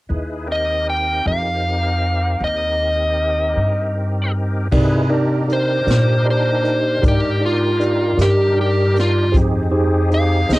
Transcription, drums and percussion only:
4.72 kick, crash
5.49 closed hi-hat
5.87 snare, closed hi-hat
6.65 closed hi-hat
7.03 kick, closed hi-hat
7.80 closed hi-hat
8.19 snare, closed hi-hat
8.96 snare, closed hi-hat
9.34 kick, closed hi-hat
10.11 closed hi-hat
10.50 snare, closed hi-hat

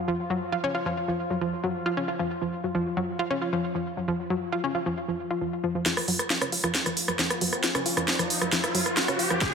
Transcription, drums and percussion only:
5.86 snare, closed hi-hat
5.97 cross-stick, open hi-hat
6.08 open hi-hat
6.19 cross-stick, closed hi-hat
6.30 snare, closed hi-hat
6.42 cross-stick, closed hi-hat
6.52 open hi-hat
6.64 cross-stick, closed hi-hat
6.75 snare, closed hi-hat
6.86 cross-stick, closed hi-hat
6.97 open hi-hat
7.08 cross-stick, closed hi-hat
7.19 snare, closed hi-hat
7.30 cross-stick, closed hi-hat
7.41 open hi-hat
7.53 cross-stick, closed hi-hat
7.64 snare, closed hi-hat
7.75 cross-stick, closed hi-hat
7.86 open hi-hat
7.97 cross-stick, closed hi-hat
8.08 snare, closed hi-hat
8.19 cross-stick, closed hi-hat
8.30 open hi-hat
8.42 cross-stick, closed hi-hat
8.52 snare, closed hi-hat
8.64 cross-stick, closed hi-hat
8.75 open hi-hat
8.86 cross-stick, closed hi-hat
8.97 snare, closed hi-hat
9.08 cross-stick, closed hi-hat
9.19 open hi-hat
9.30 cross-stick, closed hi-hat
9.41 kick, snare, closed hi-hat

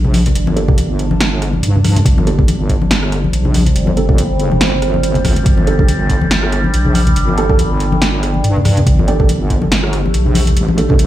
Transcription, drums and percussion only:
0.04 low conga
0.14 open hi-hat, high conga
0.26 closed hi-hat, low conga
0.35 closed hi-hat
0.47 high conga
0.57 closed hi-hat
0.68 kick, low conga
0.78 closed hi-hat, high conga
0.99 closed hi-hat
1.11 high conga
1.20 snare, closed hi-hat
1.42 cross-stick, closed hi-hat
1.53 high conga
1.63 closed hi-hat
1.75 low conga
1.84 cross-stick, open hi-hat, high conga
1.96 closed hi-hat, low conga
2.05 kick, closed hi-hat
2.18 high conga
2.27 closed hi-hat
2.39 kick, low conga
2.48 closed hi-hat, high conga
2.69 kick, closed hi-hat
2.82 high conga
2.91 snare, closed hi-hat
3.03 cross-stick
3.12 cross-stick, closed hi-hat
3.24 high conga
3.33 closed hi-hat
3.45 low conga
3.54 open hi-hat, high conga
3.66 closed hi-hat, low conga
3.76 closed hi-hat
3.87 high conga
3.97 closed hi-hat
4.09 kick, low conga
4.18 closed hi-hat, high conga
4.39 closed hi-hat
4.52 high conga
4.61 snare, closed hi-hat
4.82 cross-stick, closed hi-hat
4.94 high conga
5.03 closed hi-hat
5.15 closed hi-hat, low conga
5.25 kick, cross-stick, open hi-hat, high conga
5.36 closed hi-hat, low conga
5.46 kick, closed hi-hat
5.58 high conga
5.67 closed hi-hat
5.79 kick, low conga
5.88 closed hi-hat, high conga
6.10 kick, closed hi-hat
6.22 high conga
6.31 snare, closed hi-hat
6.43 cross-stick
6.52 cross-stick, closed hi-hat
6.64 high conga
6.74 closed hi-hat
6.85 low conga
6.94 open hi-hat, high conga
7.07 closed hi-hat, low conga
7.16 closed hi-hat
7.28 high conga
7.38 closed hi-hat
7.49 kick, low conga
7.59 closed hi-hat, high conga
7.80 closed hi-hat
7.92 high conga
8.02 snare, closed hi-hat
8.23 cross-stick, closed hi-hat
8.34 high conga
8.44 closed hi-hat
8.56 low conga
8.65 cross-stick, open hi-hat, high conga
8.77 closed hi-hat, low conga
8.87 kick, closed hi-hat
8.99 high conga
9.08 closed hi-hat
9.20 kick, low conga
9.29 closed hi-hat, high conga
9.50 kick, closed hi-hat
9.62 high conga
9.72 snare, closed hi-hat
9.83 cross-stick
9.93 cross-stick, closed hi-hat
10.06 high conga
10.14 closed hi-hat
10.26 low conga
10.35 open hi-hat, high conga
10.47 closed hi-hat, low conga
10.57 closed hi-hat
10.69 high conga
10.78 closed hi-hat
10.89 kick, low conga
10.98 closed hi-hat, high conga

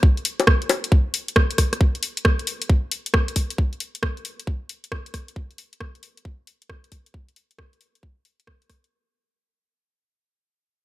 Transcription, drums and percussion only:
0.03 kick
0.17 closed hi-hat
0.25 open hi-hat
0.40 closed hi-hat, high bongo
0.47 kick, cross-stick
0.62 closed hi-hat
0.69 open hi-hat, high bongo
0.84 closed hi-hat
0.92 kick
1.14 open hi-hat
1.28 closed hi-hat
1.36 kick, cross-stick
1.51 closed hi-hat
1.58 kick, cross-stick, open hi-hat
1.73 cross-stick, closed hi-hat
1.81 kick
1.95 closed hi-hat
2.03 open hi-hat
2.17 closed hi-hat
2.25 kick, cross-stick
2.39 closed hi-hat
2.47 open hi-hat
2.62 closed hi-hat
2.69 kick
2.92 open hi-hat
3.06 closed hi-hat
3.14 kick, cross-stick
3.28 closed hi-hat
3.36 kick, open hi-hat
3.50 closed hi-hat
3.58 kick
3.73 closed hi-hat
3.80 open hi-hat
3.95 closed hi-hat
4.03 kick, cross-stick
4.17 closed hi-hat
4.25 open hi-hat
4.40 closed hi-hat
4.47 kick
4.69 open hi-hat
4.84 closed hi-hat
4.92 kick, cross-stick
5.06 closed hi-hat
5.14 kick, cross-stick, open hi-hat
5.28 closed hi-hat
5.36 kick
5.51 closed hi-hat
5.58 open hi-hat
5.73 closed hi-hat
5.80 kick, cross-stick
5.95 closed hi-hat
6.03 open hi-hat
6.17 closed hi-hat
6.25 kick
6.47 open hi-hat
6.62 closed hi-hat
6.70 kick, cross-stick
6.84 closed hi-hat
6.92 kick, open hi-hat
7.06 closed hi-hat
7.14 kick
7.29 closed hi-hat
7.36 open hi-hat
7.51 closed hi-hat
7.59 kick, cross-stick
7.73 closed hi-hat
7.81 open hi-hat
7.95 closed hi-hat
8.03 kick
8.25 open hi-hat
8.40 closed hi-hat
8.47 kick, cross-stick
8.62 closed hi-hat
8.70 kick, cross-stick, open hi-hat
8.84 closed hi-hat

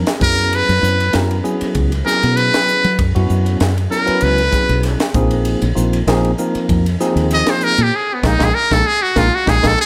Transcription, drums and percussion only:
0.07 snare, ride
0.21 kick, hi-hat pedal
0.38 ride
0.53 ride
0.69 ride
0.84 hi-hat pedal
1.00 ride
1.13 snare, ride
1.31 ride
1.45 hi-hat pedal
1.61 ride
1.75 kick, ride
1.92 ride
2.07 snare, hi-hat pedal
2.23 ride
2.37 ride
2.54 snare, ride
2.68 hi-hat pedal
2.84 ride
2.99 kick, ride
3.16 ride
3.30 hi-hat pedal
3.46 ride
3.60 snare, ride
3.78 ride
3.92 snare, hi-hat pedal
4.07 ride
4.21 ride
4.38 ride
4.52 kick, snare, hi-hat pedal
4.69 ride
4.83 snare, ride
5.00 snare, ride
5.14 kick, hi-hat pedal
5.31 ride
5.45 ride
5.62 ride
5.76 hi-hat pedal
5.93 ride
6.08 snare, ride
6.25 ride
6.38 hi-hat pedal
6.55 ride
6.69 kick, ride
6.86 ride
7.00 snare, hi-hat pedal
7.17 ride
7.31 snare, ride
7.46 snare, ride
7.61 hi-hat pedal
7.78 ride
8.23 kick, snare
8.40 kick, snare
8.71 kick, snare
9.16 kick, snare
9.47 kick, snare
9.64 kick, snare

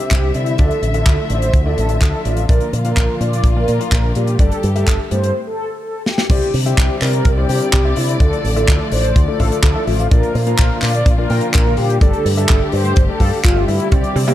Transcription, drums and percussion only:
0.11 kick, clap, closed hi-hat
0.34 closed hi-hat
0.46 closed hi-hat
0.58 kick, closed hi-hat
0.71 closed hi-hat
0.83 closed hi-hat
0.94 closed hi-hat
1.06 kick, clap, closed hi-hat
1.30 closed hi-hat
1.42 closed hi-hat
1.54 kick, closed hi-hat
1.78 closed hi-hat
1.89 closed hi-hat
2.01 kick, clap, closed hi-hat
2.25 closed hi-hat
2.37 closed hi-hat
2.49 kick, closed hi-hat
2.60 closed hi-hat
2.73 closed hi-hat
2.85 closed hi-hat
2.96 kick, clap, closed hi-hat
3.21 closed hi-hat
3.33 closed hi-hat
3.44 kick, closed hi-hat
3.68 closed hi-hat
3.81 closed hi-hat
3.92 kick, clap, closed hi-hat
4.15 closed hi-hat
4.27 closed hi-hat
4.39 kick, closed hi-hat
4.52 closed hi-hat
4.63 closed hi-hat
4.76 closed hi-hat
4.87 kick, clap, closed hi-hat
5.11 closed hi-hat
5.24 closed hi-hat
6.06 snare
6.18 snare
6.30 kick, closed hi-hat, crash
6.42 closed hi-hat
6.54 open hi-hat
6.66 closed hi-hat
6.78 kick, clap, closed hi-hat
7.02 clap, open hi-hat
7.13 closed hi-hat
7.25 kick, closed hi-hat
7.49 open hi-hat
7.61 closed hi-hat
7.73 kick, clap, closed hi-hat
7.96 open hi-hat
8.09 closed hi-hat
8.20 kick, closed hi-hat
8.33 closed hi-hat
8.45 open hi-hat
8.57 closed hi-hat
8.68 kick, clap, closed hi-hat
8.92 open hi-hat
9.04 closed hi-hat
9.16 kick, closed hi-hat
9.40 kick, open hi-hat
9.52 closed hi-hat
9.63 kick, clap, closed hi-hat
9.87 open hi-hat
9.99 closed hi-hat
10.11 kick, closed hi-hat
10.23 closed hi-hat
10.35 open hi-hat
10.47 closed hi-hat
10.58 kick, clap, closed hi-hat
10.82 clap, open hi-hat
10.94 closed hi-hat
11.06 kick, closed hi-hat
11.30 open hi-hat
11.41 closed hi-hat
11.54 kick, clap, closed hi-hat
11.77 open hi-hat
11.90 closed hi-hat
12.01 kick, closed hi-hat
12.13 closed hi-hat
12.26 open hi-hat
12.38 closed hi-hat
12.49 kick, clap, closed hi-hat
12.72 open hi-hat
12.85 closed hi-hat
12.96 kick, closed hi-hat
13.20 kick, open hi-hat
13.33 open hi-hat
13.44 kick, clap, closed hi-hat
13.68 open hi-hat
13.80 closed hi-hat
13.92 kick, closed hi-hat
14.04 closed hi-hat
14.16 open hi-hat
14.28 closed hi-hat

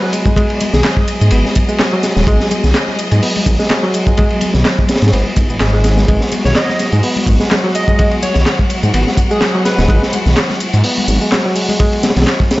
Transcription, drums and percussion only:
0.13 ride, shaker
0.26 kick, high conga, shaker
0.36 kick, ride, shaker
0.50 ride
0.61 ride, high conga, shaker
0.73 snare, low conga, shaker
0.83 snare, clap, ride, shaker
0.97 kick, high conga
1.08 ride, shaker
1.21 ride, shaker
1.31 ride, shaker
1.45 snare, high conga
1.55 kick, ride, shaker
1.69 shaker
1.79 snare, clap, ride, high conga, shaker
2.03 snare, ride, shaker
2.17 snare, high conga, shaker
2.27 kick, ride, shaker
2.40 snare
2.51 ride, high conga, shaker
2.63 snare, low conga, shaker
2.74 snare, clap, ride, shaker
2.88 snare, high conga
2.99 ride, shaker
3.11 ride, shaker
3.23 open hi-hat, shaker
3.36 ride, high conga
3.46 kick, ride, shaker
3.59 snare, shaker
3.70 snare, clap, ride, high conga, shaker
3.94 ride, shaker
4.07 kick, high conga, shaker
4.17 kick, ride, shaker
4.30 ride
4.41 ride, high conga, shaker
4.54 snare, low conga, shaker
4.65 snare, clap, ride, shaker
4.79 kick, high conga
4.88 snare, ride, shaker
4.96 snare, ride
5.02 snare, ride, shaker
5.07 snare, ride
5.13 ride, shaker
5.26 high conga
5.36 kick, ride, shaker
5.50 shaker
5.60 snare, clap, ride, high conga, shaker
5.84 snare, ride, shaker
5.97 snare, high conga, shaker
6.08 kick, ride, shaker
6.21 snare
6.32 ride, high conga, shaker
6.45 snare, low conga, shaker
6.55 snare, clap, ride, shaker
6.68 snare, high conga
6.79 snare, ride, shaker
6.92 ride, shaker
7.03 open hi-hat, shaker
7.16 ride, high conga
7.27 kick, ride, shaker
7.40 snare, shaker
7.51 snare, clap, ride, high conga, shaker
7.75 ride, shaker
7.88 kick, high conga, shaker
7.99 kick, ride, shaker
8.11 ride
8.23 ride, high conga, shaker
8.35 snare, low conga, shaker
8.46 snare, clap, ride, shaker
8.59 kick, high conga
8.70 ride, shaker
8.83 ride, shaker
8.94 ride, shaker
9.07 snare, high conga
9.17 kick, ride, shaker
9.31 shaker
9.41 snare, clap, ride, high conga, shaker
9.65 snare, ride, shaker
9.79 snare, high conga, shaker
9.89 kick, ride, shaker
10.03 snare
10.13 ride, high conga, shaker
10.26 snare, low conga, shaker
10.36 snare, clap, ride, shaker
10.49 snare, high conga
10.60 ride, shaker
10.73 ride, shaker
10.84 open hi-hat, shaker
10.97 ride, high conga
11.08 ride, shaker
11.21 shaker
11.32 snare, clap, ride, high conga, shaker
11.56 open hi-hat, ride, shaker
11.69 ride, high conga, shaker
11.80 kick, ride, shaker
11.93 ride
12.03 snare, ride, high conga, shaker
12.10 snare, ride
12.16 snare, ride, low conga, shaker
12.21 snare, ride
12.27 snare, clap, ride, shaker
12.40 kick, high conga
12.51 snare, ride, shaker

